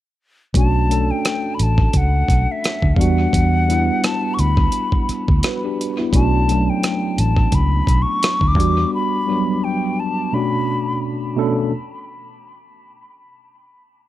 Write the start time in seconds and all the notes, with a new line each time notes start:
0.54 B1 A3 C#4 D4 F#4 A5, kick, closed hi-hat
0.89 A3 C#4 D4 A4, closed hi-hat
1.11 G5
1.25 cross-stick, closed hi-hat
1.55 B5
1.59 A1 A5, closed hi-hat
1.78 kick
1.93 C#2 F#5, kick, closed hi-hat
2.28 B1, kick, closed hi-hat
2.52 E5
2.64 cross-stick, closed hi-hat
2.82 D2, kick
2.95 E2 G3 B3 F5, kick
2.99 D4 F#4 F#5, closed hi-hat
3.33 E2, kick, closed hi-hat
3.68 G3 B3 D4 E4, closed hi-hat
4.04 A5, cross-stick, closed hi-hat
4.34 C#6
4.39 D2 B5, closed hi-hat
4.57 kick
4.72 closed hi-hat
4.92 kick
5.09 muted fingered electric bass stroke, closed hi-hat
5.28 D2, kick
5.43 F#4 B4, cross-stick, closed hi-hat
5.64 D4 G4
5.81 closed hi-hat
5.99 B3 E4
6.13 B1 A3 C#4 D4 F#4 A5, kick, closed hi-hat
6.48 F#3 A3 C#4 D4, closed hi-hat
6.70 G5
6.83 cross-stick, closed hi-hat
7.18 A1 A5, closed hi-hat
7.37 kick
7.52 C#2 B5, kick, closed hi-hat
7.87 B1, kick, closed hi-hat
8.02 C#6
8.23 cross-stick, closed hi-hat
8.41 D2, kick
8.48 D6
8.55 E2 G3 B3 D4, kick
8.60 F#4, closed hi-hat
8.94 B5
9.27 F#3 G3 B3 D4
9.64 G5
10.00 A5
10.32 B2 A3 C#4 D4 F#4 B5
11.36 B2 A3 C#4 D4 A4